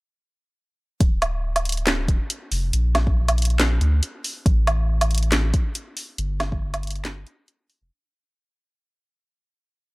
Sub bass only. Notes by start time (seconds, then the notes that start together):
1.00 D1
2.08 D1
2.51 F1
2.73 A#1
3.81 D2
4.46 A1
6.18 G1
7.82 F1